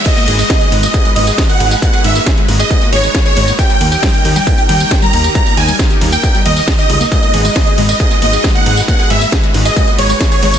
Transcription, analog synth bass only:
\new Staff \with { instrumentName = "Analog synth bass" } { \clef bass \time 4/4 \key gis \minor \tempo 4 = 136 r8 gis,,8 r8 gis,,8 r8 gis,,8 r8 gis,,8 | r8 gis,,8 r8 gis,,8 r8 gis,,8 r8 gis,,8 | r8 dis,8 r8 dis,8 r8 dis,8 r8 dis,8 | r8 dis,8 r8 dis,8 r8 dis,8 r8 cis,8 |
r8 gis,,8 r8 gis,,8 r8 gis,,8 r8 gis,,8 | r8 gis,,8 r8 gis,,8 r8 gis,,8 r8 gis,,8 | }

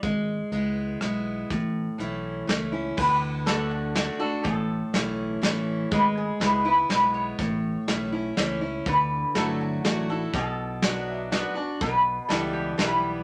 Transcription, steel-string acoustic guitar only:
\new Staff \with { instrumentName = "Steel-string acoustic guitar" } { \time 3/4 \key d \major \tempo 4 = 122 << { r4 <gis b e'>4 <gis b e'>4 | r4 <e a cis' e'>4 <e a cis' e'>8 <cis' e'>8 | r4 <d a d' fis'>4 <d a d' fis'>8 <d' fis'>8 | r4 <e a cis' e'>4 <e a cis' e'>4 |
r4 <gis b e'>8 <b e'>8 <gis b e'>4 | r4 <e a cis' e'>8 <cis' e'>8 <e a cis' e'>8 <cis' e'>8 | r4 <fis a e' fis'>4 <fis a e' fis'>8 <e' fis'>8 | r4 <fis b d' fis'>4 <fis b d' fis'>8 <d' fis'>8 |
r4 <e g b e'>4 <e g b e'>4 | } \\ { gis2 r4 | a,2 r4 | d2 r4 | a,2 r4 |
gis2 r4 | a,2 r4 | d2 r4 | b,2 r4 |
b,2 r4 | } >> }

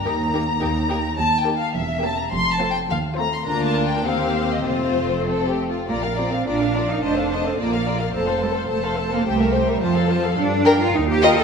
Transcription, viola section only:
\new Staff \with { instrumentName = "Viola section" } { \time 2/4 \key ees \lydian \tempo 4 = 106 << { bes8 bes8 bes8 bes8 | \key bes \major r8 bes8 r8 bes8 | r8 a8 r8 a8 | bes4 bes4 |
a4.~ a16 r16 | f'16 bes'16 f'16 bes'16 f'16 bes'16 f'16 bes'16 | c''16 a'16 c''16 a'16 f'16 bes'16 f'16 bes'16 | a'16 c''16 a'16 c''16 a'16 c''16 a'16 c''16 |
g'16 bes'16 g'16 bes'16 f'16 a'16 f'16 a'16 | r8 bes'16 r8. bes'16 r16 | } \\ { ees'8 ees'8 ees'8 ees'8 | r8 ees'8 r8 cis'8 | r8 c'8 r8 c'8 | d'4 c'4 |
c'4. r8 | r2 | r2 | r2 |
r2 | r2 | } >> }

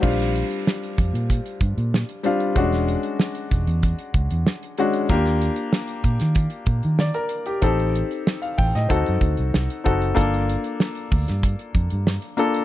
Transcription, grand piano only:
\new Staff \with { instrumentName = "Grand piano" } { \time 4/4 \key bes \major \tempo 4 = 95 << { r1 | r1 | r2. d''16 bes'8 g'16~ | g'16 r4 f''16 g''16 ees''8 r4. r16 |
r1 | } \\ { <g c' d' f'>4. r2 <g c' d' f'>8 | <gis cis' d' fis'>4. r2 <gis cis' d' fis'>8 | <bes d' f' g'>4. r2 r8 | <c' ees' g' a'>4. r8 <c' ees' fis' a'>4 r8 <c' ees' fis' a'>8 |
<bes d' f' a'>4. r2 <bes d' f' a'>8 | } >> }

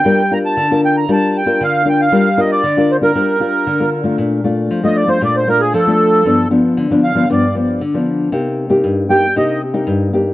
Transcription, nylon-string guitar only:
\new Staff \with { instrumentName = "Nylon-string guitar" } { \time 4/4 \key g \minor \tempo 4 = 116 << { <d' f' bes'>16 r16 <d' f' bes'>8. <d' f' bes'>8. <d' f' bes'>8. <d' f' bes'>8. <d' f' bes'>8 | <d' f' bes'>16 r16 <d' f' bes'>8 r16 <d' f' bes'>8 <d' f' bes'>16 <d' f' bes'>8 <d' f' bes'>8 r16 <d' f' bes'>8 <a d' f'>16~ | \key bes \major <a d' f'>8 <a d' f'>8. <a d' f'>8 <a d' f'>16 <a d' f'>8 <a d' f'>8. <a d' f'>8. | <f b d'>8 <f b d'>8. <f b d'>8 <f b d'>16 <f b d'>16 r16 <f b d'>8 r16 <f b d'>8. |
<bes ees' g'>8. <bes ees' g'>8. <bes ees' g'>16 r16 <bes ees' g'>8 r16 <bes ees' g'>8. <bes ees' g'>8 | } \\ { g4 d4 g4 d4 | g4 d4 g4 d4 | bes,4 f4 bes,4 f4 | g,4 d4 g,4 d4 |
c4 g,4 c4 g,4 | } >> }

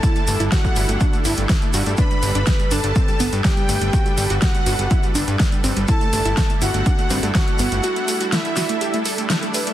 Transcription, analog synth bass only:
\new Staff \with { instrumentName = "Analog synth bass" } { \clef bass \time 4/4 \key g \major \tempo 4 = 123 r8 g,,16 g,,16 r8 g,,16 g,,16 r8 g,,16 g,,16 r8 g,16 g,16 | r8 g,,16 g,,16 r8 g,,16 g,,16 r8 g,,16 g,16 r8 g,,16 g,,16 | r8 g,,16 g,,16 r8 g,,16 g,,16 r8 g,,16 g,16 r8 g,,16 g,,16 | r8 g,,16 g,,16 r8 g,,16 g,,16 r8 g,,16 g,16 r8 g,,16 g,,16 |
r1 | }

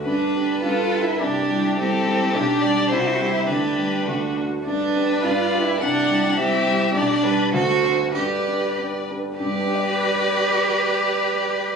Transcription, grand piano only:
\new Staff \with { instrumentName = "Grand piano" } { \time 2/4 \key g \major \tempo 4 = 103 g,8 <b d' g'>8 g,8 <b d' g'>8 | c,8 <g e' g'>8 <g e' g'>8 <g e' g'>8 | b,,8 <g d' g'>8 c,8 <g c' g'>8 | d,8 <g b g'>8 d,8 <a d' fis'>8 |
g,8 <b d' g'>8 g,8 <b d' g'>8 | c,8 <g e' g'>8 <g e' g'>8 <g e' g'>8 | b,,8 <g d' g'>8 d,8 <c' d' a'>8 | g,8 <b d' g'>8 <b d' g'>8 <b d' g'>8 |
<g, g b d' g' d''>2~ | <g, g b d' g' d''>2 | }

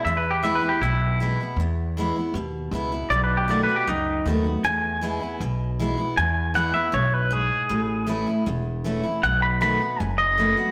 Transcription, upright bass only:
\new Staff \with { instrumentName = "Upright bass" } { \clef bass \time 4/4 \key e \major \tempo 4 = 157 e,2 b,,2 | e,2 dis,4 cis,4 | b,,2 cis,4 dis,4 | e,2 b,,2 |
e,2 b,,2 | a,,2 e,,2 | b,,2 fis,,2 | }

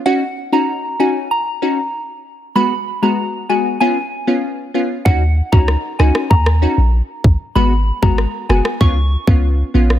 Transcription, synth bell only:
\new Staff \with { instrumentName = "Synth bell" } { \time 4/4 \key ees \minor \tempo 4 = 96 ges''16 r8 bes''8 r16 aes''8 bes''8. r4 r16 | ces'''16 r8 bes''8 r16 aes''8 aes''8. r4 r16 | ges''16 r8 bes''8 r16 aes''8 bes''8. r4 r16 | ces'''16 r8 bes''8 r16 aes''8 des'''8. r4 r16 | }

